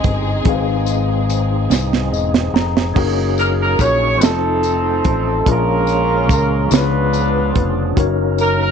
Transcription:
0.00 2.92 G#3 medium
0.00 0.41 C4 medium
0.00 2.92 C4 medium
0.00 2.93 C4 medium
0.00 0.42 D#4 medium
0.00 2.92 D#4 medium
0.00 2.93 D#4 medium
0.00 0.42 G#4 medium
0.00 2.92 G#4 medium
0.00 2.93 G#4 medium
0.00 0.46 C5 medium
0.00 0.44 D#5 medium
0.00 closed hi-hat medium
0.04 0.43 G1 loud
0.04 kick loud
0.44 1.67 G#1 loud
0.44 1.68 G#2 medium
0.44 2.91 C4 medium
0.44 2.92 D#4 medium
0.44 2.93 G#4 medium
0.44 kick loud
0.44 closed hi-hat medium
0.48 0.54 B4 medium
0.48 2.94 F5 medium
0.55 2.97 C5 medium
0.86 closed hi-hat medium
0.86 tambourine medium
1.29 closed hi-hat medium
1.29 tambourine medium
1.70 2.09 C2 medium
1.70 snare medium
1.70 tambourine loud
1.93 snare medium
2.12 2.51 E1 medium
2.12 2.52 D#5 medium
2.12 tambourine medium
2.34 snare medium
2.53 2.92 F1 medium
2.53 2.93 A#5 medium
2.53 snare loud
2.77 snare medium
2.94 3.76 F#1 loud
2.94 4.21 F#3 medium
2.94 4.20 A#3 medium
2.94 4.21 C#4 medium
2.94 4.19 D#4 medium
2.94 4.20 D#4 medium
2.94 4.21 F#4 medium
2.94 4.20 G#4 medium
2.94 4.22 G#4 medium
2.94 4.22 A#4 medium
2.94 kick loud
2.94 crash medium
3.38 3.49 A#4 medium
3.38 closed hi-hat medium
3.38 tambourine medium
3.62 3.80 A#4 medium
3.79 4.21 A#1 medium
3.79 4.22 C#5 loud
3.79 kick medium
3.79 closed hi-hat medium
3.79 tambourine medium
4.20 5.01 F1 loud
4.20 5.45 F3 medium
4.20 5.46 A3 medium
4.20 5.42 C4 medium
4.20 5.46 C4 medium
4.20 5.46 D#4 medium
4.20 5.42 D#4 medium
4.20 5.46 D#4 medium
4.20 5.47 F4 medium
4.20 5.46 A4 medium
4.20 5.47 A4 medium
4.20 5.05 A4 medium
4.20 5.47 C5 medium
4.20 snare loud
4.20 closed hi-hat loud
4.20 tambourine loud
4.63 closed hi-hat medium
4.63 tambourine medium
5.05 5.43 A1 medium
5.05 5.44 A4 medium
5.05 kick medium
5.05 closed hi-hat medium
5.45 6.29 A#1 loud
5.45 6.68 A#2 medium
5.45 6.71 F3 medium
5.45 6.72 G#3 medium
5.45 6.71 A#3 medium
5.45 6.71 C#4 medium
5.45 6.72 C#4 medium
5.45 6.69 C#4 medium
5.45 6.70 F4 medium
5.45 6.69 F4 medium
5.45 6.70 G#4 medium
5.45 6.71 G#4 medium
5.45 6.73 A#4 medium
5.45 6.30 A#4 loud
5.45 6.72 C#5 medium
5.45 kick loud
5.45 closed hi-hat loud
5.87 closed hi-hat medium
5.87 tambourine medium
6.29 6.68 C#2 loud
6.29 6.69 A#4 medium
6.29 kick loud
6.29 closed hi-hat medium
6.29 tambourine medium
6.71 7.51 C#2 loud
6.71 7.93 C#3 medium
6.71 7.97 C#3 medium
6.71 7.97 F3 medium
6.71 7.97 B3 medium
6.71 7.96 D4 medium
6.71 7.97 D4 medium
6.71 7.94 D4 medium
6.71 7.97 F4 medium
6.71 7.94 F4 medium
6.71 7.97 G#4 medium
6.71 7.97 B4 medium
6.71 7.67 B4 medium
6.71 7.98 C#5 medium
6.71 snare loud
6.71 closed hi-hat loud
6.71 tambourine loud
7.13 closed hi-hat medium
7.13 tambourine medium
7.56 7.94 F1 loud
7.56 kick loud
7.56 closed hi-hat medium
7.96 8.71 F#1 loud
7.96 8.71 F#3 medium
7.96 8.71 A#3 medium
7.96 8.71 C#4 medium
7.96 8.71 D#4 medium
7.96 8.71 F#4 medium
7.96 8.71 A#4 medium
7.96 kick loud
7.96 closed hi-hat loud
8.00 8.71 C#5 medium
8.38 8.59 A#4 medium
8.38 closed hi-hat medium
8.38 tambourine medium
8.60 8.71 A#4 loud

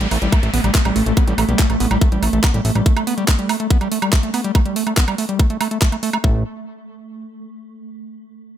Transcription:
0.00 0.07 A1 medium
0.00 0.08 G3 loud
0.00 6.28 A3 medium
0.00 closed hi-hat soft
0.00 downlifter medium
0.11 0.17 A1 loud
0.11 0.19 A3 medium
0.11 open hi-hat medium
0.11 high woodblock soft
0.22 0.28 A1 medium
0.22 0.32 G3 medium
0.22 closed hi-hat soft
0.32 0.40 A3 medium
0.32 kick loud
0.32 closed hi-hat medium
0.32 high woodblock medium
0.43 0.49 A1 medium
0.43 0.50 A3 medium
0.43 closed hi-hat soft
0.54 0.59 A1 loud
0.54 0.61 B3 loud
0.54 open hi-hat loud
0.64 0.70 A1 medium
0.64 0.71 G3 loud
0.64 closed hi-hat soft
0.64 high woodblock soft
0.75 0.82 A3 medium
0.75 kick loud
0.75 clap loud
0.75 closed hi-hat medium
0.85 0.91 A1 medium
0.85 0.95 G3 medium
0.85 closed hi-hat soft
0.85 high woodblock medium
0.96 1.02 A1 loud
0.96 1.03 A3 medium
0.96 open hi-hat medium
1.06 1.12 A1 loud
1.06 1.14 A3 medium
1.06 closed hi-hat soft
1.17 1.24 B3 loud
1.17 kick loud
1.17 closed hi-hat medium
1.17 high woodblock soft
1.27 1.33 A1 medium
1.27 1.35 G3 loud
1.27 closed hi-hat soft
1.38 1.44 A1 loud
1.38 1.45 A3 medium
1.38 open hi-hat loud
1.38 high woodblock medium
1.49 1.55 B1 medium
1.49 1.59 G3 medium
1.49 closed hi-hat soft
1.59 1.66 A3 medium
1.59 kick loud
1.59 clap loud
1.59 closed hi-hat loud
1.70 1.76 A1 medium
1.70 1.77 A3 medium
1.70 closed hi-hat soft
1.70 high woodblock soft
1.80 1.86 A1 loud
1.80 1.88 B3 loud
1.80 open hi-hat loud
1.91 1.97 A1 medium
1.91 1.98 G3 loud
1.91 closed hi-hat soft
1.91 high woodblock medium
2.01 2.09 A3 medium
2.01 kick loud
2.01 closed hi-hat medium
2.12 2.18 A1 medium
2.12 2.22 G3 medium
2.12 closed hi-hat soft
2.23 2.28 A1 loud
2.23 2.30 A3 medium
2.23 open hi-hat loud
2.23 high woodblock soft
2.33 2.39 A1 medium
2.33 2.40 A3 medium
2.33 closed hi-hat soft
2.44 2.51 B3 loud
2.44 kick loud
2.44 clap loud
2.44 closed hi-hat medium
2.44 high woodblock medium
2.54 2.60 A1 medium
2.54 2.62 G3 loud
2.54 closed hi-hat soft
2.65 2.71 A1 loud
2.65 2.72 A3 medium
2.65 open hi-hat medium
2.75 2.81 A1 medium
2.75 2.85 G3 medium
2.75 closed hi-hat soft
2.75 high woodblock soft
2.86 2.93 A3 medium
2.86 kick loud
2.86 closed hi-hat medium
2.96 3.04 A3 medium
2.96 closed hi-hat soft
2.96 high woodblock medium
3.07 3.14 B3 loud
3.07 open hi-hat loud
3.18 3.25 G3 loud
3.18 closed hi-hat soft
3.28 3.35 A3 medium
3.28 kick loud
3.28 clap loud
3.28 closed hi-hat loud
3.28 high woodblock soft
3.39 3.49 G3 medium
3.39 closed hi-hat soft
3.49 3.57 A3 medium
3.49 open hi-hat loud
3.49 high woodblock medium
3.60 3.67 A3 medium
3.60 closed hi-hat soft
3.70 3.78 B3 loud
3.70 kick loud
3.70 closed hi-hat medium
3.81 3.88 G3 loud
3.81 closed hi-hat soft
3.81 high woodblock soft
3.92 3.99 A3 medium
3.92 open hi-hat loud
4.02 4.12 G3 medium
4.02 closed hi-hat soft
4.02 high woodblock medium
4.13 4.20 A3 medium
4.13 kick loud
4.13 clap loud
4.13 closed hi-hat medium
4.23 4.31 A3 medium
4.23 closed hi-hat soft
4.34 4.41 B3 loud
4.34 open hi-hat loud
4.34 high woodblock soft
4.44 4.52 G3 loud
4.44 closed hi-hat soft
4.55 4.62 A3 medium
4.55 kick loud
4.55 closed hi-hat medium
4.55 high woodblock medium
4.66 4.76 G3 medium
4.66 closed hi-hat soft
4.76 4.83 A3 medium
4.76 open hi-hat loud
4.87 4.94 A3 medium
4.87 closed hi-hat soft
4.87 high woodblock soft
4.97 5.04 B3 loud
4.97 kick loud
4.97 clap loud
4.97 closed hi-hat medium
5.08 5.15 G3 loud
5.08 closed hi-hat soft
5.08 high woodblock medium
5.18 5.26 A3 medium
5.18 open hi-hat loud
5.29 5.39 G3 medium
5.29 closed hi-hat soft
5.39 5.47 A3 medium
5.39 kick loud
5.39 closed hi-hat medium
5.39 high woodblock soft
5.50 5.57 A3 medium
5.50 closed hi-hat soft
5.61 5.68 A3 loud
5.61 open hi-hat loud
5.61 high woodblock medium
5.71 5.78 A3 medium
5.71 closed hi-hat soft
5.82 5.89 A3 loud
5.82 kick loud
5.82 clap loud
5.82 closed hi-hat medium
5.92 5.97 A3 medium
5.92 closed hi-hat soft
5.92 high woodblock soft
6.03 6.10 A3 loud
6.03 open hi-hat loud
6.13 6.18 A3 medium
6.13 closed hi-hat soft
6.13 high woodblock medium
6.24 6.44 A1 medium
6.24 6.44 A3 medium
6.24 kick loud

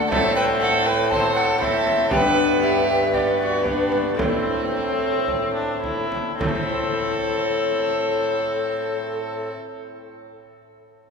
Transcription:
0.00 0.14 A3 medium
0.09 2.08 A2 medium
0.09 1.56 A3 medium
0.09 1.57 C4 medium
0.09 1.10 C4 medium
0.09 1.57 E4 medium
0.09 0.35 A4 loud
0.09 0.34 E5 loud
0.09 frame drum medium
0.35 0.44 B4 medium
0.35 0.60 G5 loud
0.61 0.88 A4 loud
0.61 0.88 F#5 loud
0.86 1.11 B4 medium
0.86 1.12 G5 loud
1.11 1.60 C4 medium
1.11 1.38 C5 medium
1.11 1.34 A5 loud
1.11 frame drum medium
1.35 1.60 A4 medium
1.35 1.63 F#5 loud
1.57 2.08 A3 medium
1.57 2.08 C4 medium
1.57 2.13 C4 medium
1.57 2.09 E4 medium
1.61 2.11 A4 medium
1.61 2.10 E5 loud
1.61 frame drum medium
1.87 frame drum medium
2.08 3.60 B3 medium
2.08 3.12 B3 medium
2.08 3.60 D4 medium
2.08 3.61 G4 medium
2.08 2.61 B4 loud
2.08 2.39 G5 loud
2.08 frame drum medium
2.12 4.15 G2 medium
2.62 3.13 G4 loud
2.62 3.15 E5 loud
3.13 3.64 B3 medium
3.13 3.39 G4 medium
3.13 3.38 D5 medium
3.13 frame drum medium
3.38 3.65 F#4 medium
3.38 3.66 D5 medium
3.62 4.15 B3 soft
3.62 4.17 B3 medium
3.62 4.16 D4 soft
3.62 4.16 G4 medium
3.62 4.16 B4 loud
3.62 frame drum medium
3.68 4.18 D4 medium
3.92 frame drum medium
4.14 6.34 A3 medium
4.14 6.35 C4 medium
4.14 6.36 E4 medium
4.14 6.07 A4 medium
4.19 6.08 A2 medium
4.19 4.66 C4 medium
4.19 6.09 C4 medium
4.19 frame drum medium
4.72 5.51 C4 medium
5.28 frame drum soft
5.54 5.82 D4 medium
5.82 6.39 E4 medium
5.82 frame drum medium
6.12 frame drum medium
6.39 9.51 A2 medium
6.39 9.52 A2 medium
6.39 9.50 C4 medium
6.39 9.50 A4 medium
6.39 9.53 A4 medium
6.39 frame drum medium
6.48 9.59 A3 medium
6.55 9.66 C4 medium
6.63 9.73 E4 medium
6.69 9.80 C5 medium

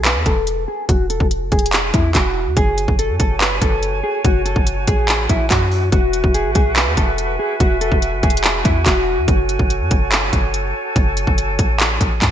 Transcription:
0.00 0.17 B1 loud
0.05 0.21 B4 medium
0.05 clap loud
0.05 closed hi-hat medium
0.15 0.25 E2 loud
0.26 0.66 E1 loud
0.26 0.65 A4 medium
0.26 kick loud
0.26 closed hi-hat medium
0.47 closed hi-hat medium
0.68 0.84 G#4 medium
0.89 1.19 E1 loud
0.89 1.05 F#4 loud
0.89 kick loud
0.89 closed hi-hat medium
1.10 1.26 A4 medium
1.10 closed hi-hat medium
1.20 1.43 E1 loud
1.20 kick medium
1.31 closed hi-hat medium
1.41 1.51 F#1 loud
1.52 1.92 E1 loud
1.52 1.91 G#4 medium
1.52 kick loud
1.52 closed hi-hat soft
1.59 closed hi-hat medium
1.66 closed hi-hat medium
1.73 clap loud
1.73 closed hi-hat medium
1.94 2.14 E2 loud
1.94 2.10 E4 medium
1.94 kick loud
1.94 closed hi-hat medium
2.15 2.48 E1 loud
2.15 2.54 F#4 medium
2.15 kick loud
2.15 clap medium
2.15 closed hi-hat medium
2.46 2.56 E2 loud
2.56 2.87 F#1 loud
2.56 12.31 F#4 medium
2.56 2.96 G#4 medium
2.56 5.89 C#5 medium
2.56 5.89 G#5 medium
2.56 kick loud
2.56 closed hi-hat medium
2.78 closed hi-hat medium
2.88 3.11 F#1 loud
2.88 kick medium
2.99 3.15 A4 medium
2.99 closed hi-hat medium
3.09 3.19 F#2 loud
3.19 3.60 F#1 loud
3.19 3.35 A4 medium
3.19 kick medium
3.19 closed hi-hat medium
3.40 3.56 B4 medium
3.40 clap loud
3.40 closed hi-hat medium
3.62 4.02 F#1 loud
3.62 4.01 A4 medium
3.62 kick loud
3.62 closed hi-hat medium
3.83 closed hi-hat medium
4.03 4.19 G#4 medium
4.25 4.55 F#1 loud
4.25 4.41 F#4 loud
4.25 kick loud
4.25 closed hi-hat medium
4.45 4.61 A4 medium
4.45 closed hi-hat medium
4.56 4.86 F#1 loud
4.56 kick medium
4.67 closed hi-hat medium
4.87 5.28 A1 loud
4.87 5.27 G#4 medium
4.87 kick loud
4.87 closed hi-hat medium
5.08 clap loud
5.08 closed hi-hat medium
5.29 5.50 A1 loud
5.29 5.45 E4 medium
5.29 kick loud
5.29 closed hi-hat medium
5.50 5.91 F#2 loud
5.50 5.90 F#4 medium
5.50 kick loud
5.50 clap medium
5.50 closed hi-hat medium
5.72 open hi-hat medium
5.92 6.23 E1 loud
5.92 6.32 F#4 loud
5.92 9.25 B4 medium
5.92 9.25 E5 medium
5.92 12.31 G#5 loud
5.92 kick loud
5.92 closed hi-hat medium
6.13 closed hi-hat medium
6.24 6.46 E1 loud
6.24 kick medium
6.34 6.50 G#4 medium
6.34 closed hi-hat medium
6.45 6.55 G#1 loud
6.55 6.88 B1 loud
6.55 6.71 G#4 medium
6.55 kick loud
6.55 closed hi-hat medium
6.76 6.92 B4 medium
6.76 clap loud
6.76 closed hi-hat medium
6.87 6.97 E2 loud
6.97 7.38 E1 loud
6.97 7.37 A4 medium
6.97 kick loud
6.97 closed hi-hat medium
7.18 closed hi-hat medium
7.39 7.55 G#4 medium
7.60 7.90 E1 loud
7.60 7.76 F#4 loud
7.60 kick loud
7.60 closed hi-hat medium
7.81 7.97 A4 medium
7.81 closed hi-hat medium
7.92 8.14 E1 loud
7.92 kick medium
8.02 closed hi-hat medium
8.13 8.23 F#1 loud
8.23 8.63 E1 loud
8.23 8.63 G#4 medium
8.23 kick loud
8.23 closed hi-hat soft
8.30 closed hi-hat medium
8.37 closed hi-hat medium
8.44 clap loud
8.44 closed hi-hat medium
8.65 8.85 E2 loud
8.65 8.81 E4 medium
8.65 kick medium
8.65 closed hi-hat medium
8.86 9.19 E1 loud
8.86 9.25 F#4 medium
8.86 kick loud
8.86 clap medium
8.86 closed hi-hat medium
9.18 9.28 E2 loud
9.28 9.58 F#1 loud
9.28 12.31 A4 medium
9.28 12.31 C#5 medium
9.28 kick loud
9.28 closed hi-hat medium
9.49 closed hi-hat medium
9.59 9.82 F#1 loud
9.59 kick medium
9.70 closed hi-hat medium
9.80 9.90 F#2 loud
9.91 10.31 F#1 loud
9.91 kick loud
9.91 closed hi-hat medium
10.12 clap loud
10.12 closed hi-hat medium
10.33 10.73 F#1 loud
10.33 kick loud
10.33 closed hi-hat medium
10.54 closed hi-hat medium
10.96 11.26 F#1 loud
10.96 kick loud
10.96 closed hi-hat medium
11.17 closed hi-hat medium
11.27 11.57 F#1 loud
11.27 kick medium
11.38 closed hi-hat medium
11.59 11.99 A1 loud
11.59 kick loud
11.59 closed hi-hat medium
11.80 clap loud
11.80 closed hi-hat medium
12.01 12.21 A1 loud
12.01 kick loud
12.01 closed hi-hat medium
12.22 12.31 F#2 loud
12.22 kick loud
12.22 clap loud
12.22 closed hi-hat medium

